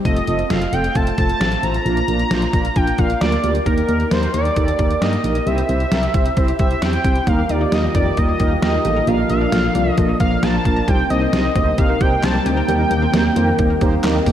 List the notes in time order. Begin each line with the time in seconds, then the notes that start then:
0.05 F1 A3 C4 F4 A4 D#5, kick, closed hi-hat
0.16 closed hi-hat
0.27 F1 A3 C4 F4 A4, closed hi-hat
0.39 closed hi-hat
0.50 F1 A3 C4 F4 A4 F5, snare, closed hi-hat
0.62 closed hi-hat
0.73 F1 A3 C4 F4 A4 G5, closed hi-hat
0.84 closed hi-hat
0.95 F1 A3 C4 F4 A4 A5, kick, closed hi-hat
1.07 closed hi-hat
1.18 F1 A3 C4 F4 A4 A5, kick, closed hi-hat
1.29 closed hi-hat
1.40 A1 A3 C4 F4 A4, snare, closed hi-hat
1.52 closed hi-hat
1.63 A1 A3 C4 F4 C5 A#5, closed hi-hat
1.74 closed hi-hat
1.86 A#1 A#3 D4 F4 A#4, closed hi-hat
1.97 closed hi-hat
2.08 A#1 A#3 D4 F4 A#4, closed hi-hat
2.19 closed hi-hat
2.31 A#1 A#3 D4 F4 C5, snare, closed hi-hat
2.42 closed hi-hat
2.53 A#1 A#3 D4 F4 A#4, kick, closed hi-hat
2.65 closed hi-hat
2.76 A#1 A#3 D4 F4 A#4 G5, kick, closed hi-hat
2.87 closed hi-hat
2.98 A#1 A#3 D4 F4 A#4 F5, kick, closed hi-hat
3.10 closed hi-hat
3.21 D2 A#3 D4 F4 A#4 D5, snare, closed hi-hat
3.32 closed hi-hat
3.44 D2 A#3 D4 F4 G4, closed hi-hat
3.55 closed hi-hat
3.66 D#2 A#3 D#4 G4 A#4, kick, closed hi-hat
3.78 closed hi-hat
3.88 D#2 A#3 D#4 G4 A#4, closed hi-hat
4.00 closed hi-hat
4.11 D#2 A#3 D#4 G4 A#4 C5, snare, closed hi-hat
4.23 closed hi-hat
4.34 D#2 A#3 D#4 G4 A#4 D5, closed hi-hat
4.45 closed hi-hat
4.56 D#2 A#3 D#4 G4 A4, kick, closed hi-hat
4.68 closed hi-hat
4.79 D#2 A#3 D#4 G4 A#4, kick, closed hi-hat
4.91 closed hi-hat
5.01 G2 A#3 D#4 G4 A#4 D#5, snare, closed hi-hat
5.13 closed hi-hat
5.24 A#1 A#3 D#4 G4 A#4, closed hi-hat
5.35 closed hi-hat
5.46 C2 C4 E4 G4 C5 E5, closed hi-hat
5.58 closed hi-hat
5.69 C2 C4 E4 G4 C5, closed hi-hat
5.80 closed hi-hat
5.92 C2 C4 E4 G4 A#4, snare, closed hi-hat
6.03 closed hi-hat
6.14 C2 C4 E4 G4 C5, kick, closed hi-hat
6.26 closed hi-hat
6.37 C2 C4 E4 G4 C5, kick, closed hi-hat
6.48 closed hi-hat
6.59 C2 C4 E4 G4 C5 E5, kick, closed hi-hat
6.71 closed hi-hat
6.82 E2 C4 E4 G4 C5 G5, snare, closed hi-hat
6.93 closed hi-hat
7.04 C2 C4 E4 G4 C5, kick, closed hi-hat
7.16 closed hi-hat
7.27 D#2 D#3 G3 A#3 D#4 F4 G4 A#4 F5, kick, closed hi-hat
7.49 D#2 A#3 D#4 G4 A#4 D5, closed hi-hat
7.61 D#4
7.72 D#2 A#3 D#4 G4 A#4 D#5, snare, closed hi-hat
7.83 G3
7.95 F2 A#3 D#4 G4 A#4 D5, kick, closed hi-hat
8.17 D#2 G3 A#3 D#4 G4 A#4 D#5, kick, closed hi-hat
8.29 A#3
8.40 D#2 G3 A#3 D#4 G4 A#4, kick, closed hi-hat
8.62 D#2 A#3 D#4 G4 A#4 D#5, snare, closed hi-hat
8.74 G3
8.85 A1 A#3 D#4 G4 A4, closed hi-hat
8.96 A#4
9.07 A#1 F3 A#3 D4 F4 A#4 F5, closed hi-hat
9.30 A#1 A#3 D4 F4 A#4 F5, closed hi-hat
9.41 D4
9.52 A#1 A#3 D4 F4 A4, snare, closed hi-hat
9.64 F3
9.75 C2 A#3 D4 F4 A#4, closed hi-hat
9.92 D#5
9.97 A#1 F3 A#3 D4 F4 A4, kick, closed hi-hat
10.09 A#3
10.20 A#1 F3 A#3 D4 F4 A#4 F5, kick, closed hi-hat
10.43 A#1 A#3 D4 F4 A#4 A5, snare, closed hi-hat
10.54 F3
10.65 A#1 A#3 D4 F4 A#4 F5, kick, closed hi-hat
10.76 A#5
10.88 C2 C3 G3 C4 D#4 G4 C5 G5, kick, closed hi-hat
11.10 C2 C4 D#4 G4 C5 D#5, closed hi-hat
11.21 C4
11.33 C2 C4 D#4 G4 C5, snare, closed hi-hat
11.44 G3
11.55 D2 C4 D#4 G4 C5, kick, closed hi-hat
11.78 C2 G3 C4 D#4 G4 C5 F5, kick, closed hi-hat
11.89 A#3
12.01 C2 G3 C4 D#4 G4 C5 G5, kick, closed hi-hat
12.23 C2 A#3 C4 D#4 G4 C5 A5, snare, clap, closed hi-hat
12.35 G3
12.46 D2 C4 D#4 G4 C5 G5, closed hi-hat
12.57 A#4
12.68 D#2 D#3 G3 A#3 C4 D#4 G4 A#4, closed hi-hat
12.91 D#2 A#3 D#4 G4 A#4, closed hi-hat
13.02 C4
13.13 D#2 A#3 D#4 G4 A#4, snare, closed hi-hat
13.25 G3
13.36 F2 A#3 C4 D#4 G4 A#4, closed hi-hat
13.59 D#2 G3 A#3 D#4 G4 A#4, kick, closed hi-hat
13.70 A#3
13.81 D#2 G3 A#3 D#4 G4 C5, kick, closed hi-hat
14.04 D#2 A#3 D#4 G4 A#4, snare, clap, closed hi-hat
14.15 G3
14.26 D#2 A#3 D#4 G4 A4, kick, open hi-hat